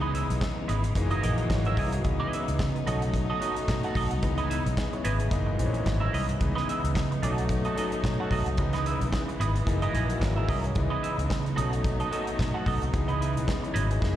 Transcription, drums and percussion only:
0.15 closed hi-hat
0.30 closed hi-hat
0.41 kick, snare, clap
0.69 closed hi-hat
0.84 closed hi-hat
0.95 kick, closed hi-hat
1.11 closed hi-hat
1.23 closed hi-hat
1.38 closed hi-hat
1.50 kick, snare, clap
1.65 closed hi-hat
1.77 kick, open hi-hat
1.93 closed hi-hat
2.04 kick, closed hi-hat
2.33 closed hi-hat
2.48 closed hi-hat
2.59 kick, snare, clap
2.76 closed hi-hat
2.87 closed hi-hat
3.02 closed hi-hat
3.14 kick, closed hi-hat
3.42 closed hi-hat
3.56 closed hi-hat
3.68 kick, snare, clap
3.83 closed hi-hat
3.95 kick, open hi-hat
4.11 closed hi-hat
4.23 kick, closed hi-hat
4.38 closed hi-hat
4.51 closed hi-hat
4.66 closed hi-hat
4.77 kick, snare, clap
4.93 closed hi-hat
5.05 closed hi-hat
5.20 closed hi-hat
5.31 kick, closed hi-hat
5.59 closed hi-hat
5.74 closed hi-hat
5.86 kick, snare, clap
6.14 open hi-hat
6.29 closed hi-hat
6.41 kick, closed hi-hat
6.57 snare
6.69 closed hi-hat
6.85 closed hi-hat
6.95 kick, snare, clap
7.12 closed hi-hat
7.23 closed hi-hat
7.38 closed hi-hat
7.49 kick, closed hi-hat
7.65 closed hi-hat
7.78 closed hi-hat
7.92 closed hi-hat
8.04 kick, snare, clap
8.31 kick, open hi-hat
8.46 closed hi-hat
8.57 kick, closed hi-hat
8.73 snare, closed hi-hat
8.86 closed hi-hat
9.01 closed hi-hat
9.13 kick, snare, clap
9.29 closed hi-hat
9.41 closed hi-hat
9.56 closed hi-hat
9.67 kick, closed hi-hat
9.82 closed hi-hat
9.95 closed hi-hat
10.10 closed hi-hat
10.21 kick, snare, clap
10.49 kick, open hi-hat
10.64 closed hi-hat
10.75 kick, closed hi-hat
11.04 closed hi-hat
11.19 closed hi-hat
11.30 kick, snare, clap
11.46 closed hi-hat
11.58 closed hi-hat
11.73 closed hi-hat
11.84 kick, closed hi-hat
12.00 closed hi-hat
12.13 closed hi-hat
12.27 closed hi-hat
12.39 kick, snare, clap
12.66 kick, open hi-hat
12.82 closed hi-hat
12.94 kick, closed hi-hat
13.09 closed hi-hat
13.22 closed hi-hat
13.37 closed hi-hat
13.48 kick, snare, clap
13.64 closed hi-hat
13.76 closed hi-hat
13.91 closed hi-hat
14.02 kick, snare

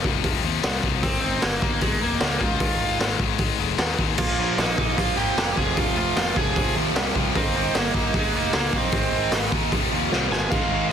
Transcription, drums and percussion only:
0.04 kick
0.24 kick, open hi-hat
0.63 snare, open hi-hat
0.83 kick
1.03 kick, open hi-hat
1.42 snare, open hi-hat
1.62 kick
1.81 kick, open hi-hat
2.20 snare, open hi-hat
2.41 kick
2.60 kick, open hi-hat
3.00 snare, open hi-hat
3.20 kick
3.38 kick, open hi-hat
3.78 snare, open hi-hat
3.99 kick
4.18 kick, crash
4.58 snare, open hi-hat
4.78 kick
4.98 kick, open hi-hat
5.38 snare, open hi-hat
5.57 kick
5.77 kick, open hi-hat
6.17 snare, open hi-hat
6.36 kick
6.56 kick, open hi-hat
6.96 snare, open hi-hat
7.16 kick
7.36 kick, open hi-hat
7.75 snare, open hi-hat
7.94 kick
8.14 kick, open hi-hat
8.53 snare, open hi-hat
8.73 kick
8.92 kick, open hi-hat
9.32 snare, open hi-hat
9.52 kick
9.72 kick, open hi-hat
10.12 snare
10.32 snare
10.52 kick, crash

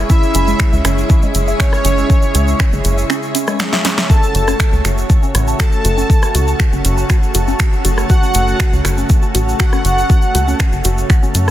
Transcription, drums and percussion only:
0.10 kick, shaker
0.23 shaker
0.35 closed hi-hat, shaker
0.48 shaker
0.59 finger snap, kick, shaker
0.73 shaker
0.85 finger snap, cross-stick, closed hi-hat, shaker
0.98 shaker
1.10 kick, shaker
1.22 shaker
1.35 closed hi-hat, shaker
1.48 shaker
1.60 finger snap, kick, shaker
1.73 cross-stick, shaker
1.85 closed hi-hat, shaker
1.98 shaker
2.10 kick, shaker
2.22 shaker
2.35 closed hi-hat, shaker
2.48 shaker
2.60 finger snap, kick, cross-stick, shaker
2.73 shaker
2.85 closed hi-hat, shaker
2.98 shaker
3.10 finger snap, shaker
3.23 shaker
3.35 closed hi-hat, shaker
3.47 cross-stick, shaker
3.60 finger snap, snare, shaker
3.73 snare, shaker
3.85 snare, closed hi-hat, shaker
3.98 snare, shaker
4.10 kick, shaker
4.23 shaker
4.35 closed hi-hat, shaker
4.48 cross-stick, shaker
4.60 finger snap, kick, shaker
4.73 shaker
4.85 finger snap, closed hi-hat, shaker
4.98 shaker
5.10 kick, shaker
5.23 shaker
5.35 cross-stick, closed hi-hat, shaker
5.47 shaker
5.60 finger snap, kick, shaker
5.72 shaker
5.85 closed hi-hat, shaker
5.98 shaker
6.10 kick, shaker
6.22 cross-stick, shaker
6.35 closed hi-hat, shaker
6.48 shaker
6.60 finger snap, kick, shaker
6.73 shaker
6.85 closed hi-hat, shaker
6.97 shaker
7.10 finger snap, kick, cross-stick, shaker
7.23 shaker
7.34 closed hi-hat, shaker
7.48 shaker
7.59 finger snap, kick, shaker
7.73 shaker
7.85 closed hi-hat, shaker
7.98 cross-stick, shaker
8.10 kick, shaker
8.23 shaker
8.34 closed hi-hat, shaker
8.48 shaker
8.60 finger snap, kick, shaker
8.73 shaker
8.85 finger snap, cross-stick, closed hi-hat, shaker
8.98 shaker
9.09 kick, shaker
9.22 shaker
9.35 closed hi-hat, shaker
9.49 shaker
9.59 finger snap, kick, shaker
9.73 cross-stick, shaker
9.85 closed hi-hat, shaker
9.98 shaker
10.10 kick, shaker
10.22 shaker
10.35 closed hi-hat, shaker
10.48 shaker
10.59 finger snap, kick, cross-stick, shaker
10.72 shaker
10.84 closed hi-hat, shaker
10.98 shaker
11.10 finger snap, kick, shaker
11.23 shaker
11.35 closed hi-hat, shaker
11.48 cross-stick

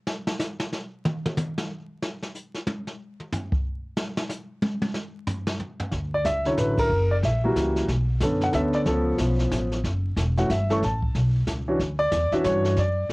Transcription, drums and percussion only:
0.07 snare
0.27 snare
0.39 snare, hi-hat pedal
0.60 snare
0.72 snare
1.05 mid tom
1.26 mid tom
1.37 hi-hat pedal, mid tom
1.58 snare
2.02 snare
2.22 snare
2.35 hi-hat pedal
2.54 snare
2.67 high tom
2.87 snare
3.20 mid tom
3.32 floor tom, hi-hat pedal
3.52 kick
3.97 snare
4.17 snare
4.29 snare, hi-hat pedal
4.62 high tom
4.82 high tom
4.94 snare
5.27 floor tom, hi-hat pedal
5.47 snare
5.60 floor tom
5.80 floor tom
5.92 brush sweep, kick, snare
6.25 kick, snare, hi-hat pedal
6.45 snare
6.57 kick, snare, hi-hat pedal
6.78 kick, ride
6.90 brush sweep
7.23 kick, snare
7.56 kick, snare, hi-hat pedal
7.76 snare
7.88 brush sweep, kick, snare
8.20 kick, snare, hi-hat pedal
8.41 snare
8.53 kick, snare, hi-hat pedal
8.73 snare
8.86 brush sweep, kick, snare
9.18 kick, snare, hi-hat pedal
9.39 snare
9.51 kick, snare, hi-hat pedal
9.72 snare
9.84 brush sweep, kick, snare
10.17 kick, snare, hi-hat pedal
10.38 snare
10.50 kick, snare, hi-hat pedal
10.70 snare
10.82 brush sweep, kick, snare
11.02 kick
11.15 kick, snare
11.47 kick, snare, hi-hat pedal
11.80 brush sweep, kick, snare
12.12 kick, snare, hi-hat pedal
12.32 snare
12.44 kick, snare, hi-hat pedal
12.65 snare
12.76 brush sweep, kick, snare
13.10 kick, snare

